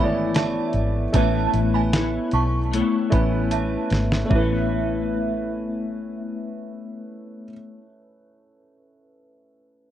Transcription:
0.00 0.59 G#1 medium
0.00 1.14 E3 medium
0.00 1.03 A3 medium
0.00 1.04 B3 medium
0.00 1.14 B3 medium
0.00 1.04 E4 medium
0.00 1.14 E4 medium
0.00 1.15 A4 medium
0.00 1.16 C#5 medium
0.00 1.08 D5 medium
0.00 0.15 G#5 medium
0.00 0.15 B5 medium
0.35 0.92 E5 medium
0.35 0.91 A5 medium
0.35 snare medium
0.35 closed hi-hat medium
0.73 1.06 G#1 medium
0.73 closed hi-hat soft
1.13 1.46 A1 loud
1.13 2.58 A3 medium
1.13 1.96 A3 medium
1.13 1.92 B3 medium
1.13 2.58 C#4 medium
1.13 2.59 E4 medium
1.13 1.94 E4 medium
1.13 1.95 A4 medium
1.13 2.59 B4 medium
1.13 1.95 C#5 medium
1.13 1.52 E5 medium
1.13 1.52 A5 loud
1.13 kick medium
1.13 closed hi-hat medium
1.54 2.17 A1 medium
1.54 closed hi-hat medium
1.74 1.93 G#5 medium
1.74 1.93 B5 medium
1.93 2.72 B3 medium
1.93 2.73 E4 medium
1.93 2.74 A4 medium
1.93 2.75 C#5 medium
1.93 snare loud
1.93 closed hi-hat medium
2.31 2.81 B1 medium
2.31 2.89 A5 medium
2.31 2.89 C#6 medium
2.31 closed hi-hat medium
2.71 4.26 A3 medium
2.71 4.31 B3 medium
2.71 4.35 E4 medium
2.71 4.34 A4 medium
2.71 4.34 C#5 medium
2.71 closed hi-hat medium
3.10 3.76 A1 medium
3.10 4.20 A3 medium
3.10 4.20 C#4 medium
3.10 4.20 E4 medium
3.10 4.21 B4 medium
3.10 3.31 G#5 medium
3.10 3.31 B5 medium
3.10 kick medium
3.10 closed hi-hat medium
3.51 4.08 E5 soft
3.51 4.07 A5 medium
3.51 closed hi-hat medium
3.90 4.23 G#1 medium
3.90 snare medium
3.90 closed hi-hat soft
4.12 snare medium
4.25 7.42 A3 medium
4.25 7.77 A3 medium
4.25 7.45 C#4 medium
4.30 7.47 A1 medium
4.30 7.81 B3 medium
4.30 7.48 E4 medium
4.30 6.64 E5 medium
4.30 kick medium
4.35 7.85 E4 medium
4.35 7.89 A4 medium
4.35 7.52 B4 medium
4.42 7.92 C#5 medium

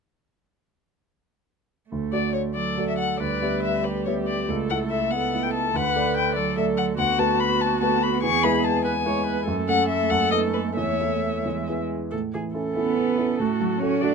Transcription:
1.89 2.13 D2 soft
1.89 2.57 A3 soft
2.12 2.73 A3 soft
2.12 2.74 F#4 soft
2.12 2.33 D5 medium
2.12 2.74 D5 soft
2.33 2.41 C#5 soft
2.55 3.19 F#3 soft
2.55 3.22 A4 soft
2.55 2.87 D5 medium
2.77 3.16 A3 soft
2.77 3.17 F#4 soft
2.77 3.17 D5 soft
2.88 2.98 E5 medium
2.99 3.19 F#5 medium
3.20 3.41 D2 soft
3.20 4.46 G3 soft
3.20 3.84 B4 medium
3.20 3.62 D5 medium
3.42 4.03 B3 soft
3.42 4.03 G4 soft
3.42 4.03 E5 soft
3.63 3.86 E5 medium
3.84 4.52 G4 soft
3.84 4.05 B4 medium
4.05 4.45 B3 soft
4.05 4.45 G4 soft
4.05 4.13 C#5 medium
4.05 4.46 E5 soft
4.27 4.48 D5 medium
4.48 4.69 C#2 soft
4.48 5.13 A3 soft
4.48 5.12 A4 medium
4.70 5.29 A3 soft
4.70 5.29 E4 soft
4.70 5.29 E5 soft
4.70 4.78 F#5 medium
4.90 5.12 E5 medium
5.11 5.73 B3 soft
5.11 5.76 A4 soft
5.11 5.44 F#5 medium
5.33 5.71 A3 soft
5.33 5.71 E4 soft
5.33 5.71 E5 soft
5.43 5.53 G5 medium
5.54 5.78 A5 medium
5.74 5.95 D2 soft
5.74 6.38 A3 soft
5.74 6.38 B4 medium
5.74 6.16 F#5 medium
5.95 6.53 A3 soft
5.95 6.53 A4 soft
5.95 6.53 D5 soft
6.17 6.35 G5 medium
6.35 6.98 F#3 soft
6.35 6.98 A4 medium
6.35 6.56 D5 medium
6.57 6.94 A3 soft
6.57 6.94 A4 soft
6.57 6.94 D5 soft
6.57 6.65 E5 medium
6.77 6.85 F#5 medium
6.98 7.18 D2 medium
6.98 9.44 B3 medium
6.98 8.21 F#4 medium
6.98 7.21 F#5 medium
7.18 7.77 A3 soft
7.18 7.77 F#4 soft
7.18 7.77 B4 soft
7.18 7.41 A5 medium
7.40 7.63 B5 medium
7.61 7.80 A5 medium
7.81 8.19 A3 soft
7.81 8.19 F#4 soft
7.81 8.20 B4 soft
7.81 8.05 A5 medium
8.03 8.22 B5 medium
8.23 8.43 E2 soft
8.23 8.84 G#4 medium
8.23 8.45 C#6 medium
8.43 9.01 G#3 soft
8.43 9.02 E4 soft
8.43 9.01 B4 soft
8.43 8.66 B5 medium
8.64 8.84 A5 medium
8.85 8.93 B4 medium
8.85 9.46 G#5 medium
9.05 9.43 G#3 soft
9.05 9.43 E4 soft
9.05 9.43 B4 soft
9.05 9.26 C#5 medium
9.27 9.47 B4 medium
9.47 9.68 F#2 medium
9.47 11.41 A3 soft
9.47 10.75 A4 medium
9.68 10.07 A3 soft
9.68 10.07 C#4 soft
9.68 10.07 A4 soft
9.68 9.88 F#5 medium
9.89 10.11 E5 medium
10.10 10.32 F#2 soft
10.10 10.31 F#5 medium
10.32 10.73 B3 soft
10.32 10.73 D#4 soft
10.32 10.73 A4 soft
10.32 10.40 D#5 medium
10.53 10.61 B4 medium
10.77 10.99 E2 soft
10.77 11.43 C#5 medium
10.77 11.77 E5 medium
11.00 11.41 A3 soft
11.00 11.41 E4 soft
11.00 11.41 A4 soft
11.44 11.67 E2 soft
11.44 11.88 G#3 soft
11.68 12.09 B3 soft
11.68 12.09 E4 soft
11.68 12.09 G#4 soft
12.11 13.36 A2 soft
12.11 12.19 A4 medium
12.34 12.68 E3 soft
12.34 12.42 G#4 soft
12.54 12.74 C#4 soft
12.54 12.74 E4 soft
12.54 12.74 A4 soft
12.54 13.42 A4 soft
12.75 13.41 B3 medium
12.75 12.94 C#4 soft
12.75 12.95 E4 soft
12.75 12.96 A4 soft
12.75 13.36 B4 medium
12.96 13.16 C#4 soft
13.17 13.37 C#4 soft
13.17 13.37 E4 soft
13.17 13.38 A4 soft
13.39 14.14 A2 soft
13.39 13.80 A3 medium
13.39 14.02 F#4 medium
13.39 13.81 A4 soft
13.60 13.94 F#3 soft
13.80 14.00 A3 soft
13.80 14.04 C#4 medium
13.80 14.01 F#4 soft
13.80 14.01 A4 soft
13.80 14.03 C#5 medium
14.01 14.14 A3 soft
14.01 14.14 D4 medium
14.01 14.10 F#4 soft
14.01 14.14 F#4 soft
14.01 14.14 A4 soft
14.01 14.14 D5 medium

